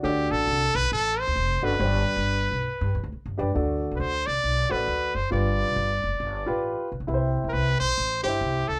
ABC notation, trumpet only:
X:1
M:4/4
L:1/16
Q:"Swing" 1/4=136
K:G
V:1 name="Trumpet"
G2 A4 B2 A2 c4 B2- | B12 z4 | z3 z/2 B/2 c2 d4 B4 c2 | d12- d2 z2 |
z3 z/2 _B/2 =B2 c4 G4 A2 |]